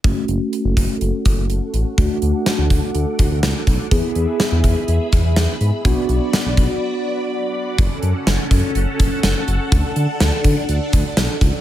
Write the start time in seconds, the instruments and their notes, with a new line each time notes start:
0.04 analog synth bass F#1, tine electric piano A3 C#4 F#4, string machine A4 F#5 C#6, kick, closed hi-hat
0.28 analog synth bass F#1, closed hi-hat
0.53 closed hi-hat
0.65 analog synth bass F#1
0.77 analog synth bass F#1, kick, closed hi-hat
1.01 analog synth bass F#1, closed hi-hat
1.25 analog synth bass F#1, kick, closed hi-hat
1.37 analog synth bass F#1
1.49 analog synth bass F#1, closed hi-hat
1.74 analog synth bass A1, closed hi-hat
1.98 analog synth bass D2, tine electric piano A3 D4 F#4, string machine A4 D6, kick, closed hi-hat
2.22 analog synth bass D2, closed hi-hat
2.46 snare, closed hi-hat
2.58 analog synth bass D2
2.70 analog synth bass D2, kick, closed hi-hat
2.95 analog synth bass D2, closed hi-hat
3.19 analog synth bass D2, kick, closed hi-hat
3.31 analog synth bass D2
3.43 analog synth bass C#2, snare, closed hi-hat
3.67 analog synth bass B1, kick, closed hi-hat
3.91 analog synth bass E2, tine electric piano B3 E4 G#4, string machine G#4 E5 B5, kick, closed hi-hat
4.15 analog synth bass E2, closed hi-hat
4.40 snare, closed hi-hat
4.52 analog synth bass E2
4.64 analog synth bass E2, kick, closed hi-hat
4.88 analog synth bass E2, closed hi-hat
5.12 analog synth bass E2, kick, closed hi-hat
5.24 analog synth bass E2
5.36 analog synth bass E2, snare, closed hi-hat
5.61 analog synth bass G#2, closed hi-hat
5.85 analog synth bass B1, tine electric piano B3 D4 F#4, string machine F#4 D5, kick, closed hi-hat
6.09 analog synth bass B1, closed hi-hat
6.33 snare, closed hi-hat
6.45 analog synth bass B1
6.57 analog synth bass B1, kick, closed hi-hat
7.78 analog synth bass F#1, string machine C#4 A4 F#5, kick, closed hi-hat
8.02 analog synth bass F#2, closed hi-hat
8.27 analog synth bass F#1, snare, closed hi-hat
8.51 analog synth bass F#2, kick, closed hi-hat
8.75 analog synth bass F#1, closed hi-hat
8.99 analog synth bass F#1, kick, closed hi-hat
9.23 analog synth bass F#1, snare, closed hi-hat
9.48 analog synth bass F#1, closed hi-hat
9.72 analog synth bass D2, string machine D4, kick, closed hi-hat
9.96 analog synth bass D3, closed hi-hat
10.20 analog synth bass D2, snare, closed hi-hat
10.44 analog synth bass D3, kick, closed hi-hat
10.69 analog synth bass D2, closed hi-hat
10.93 analog synth bass D2, kick, closed hi-hat
11.17 analog synth bass B1, snare, closed hi-hat
11.41 analog synth bass C#2, kick, closed hi-hat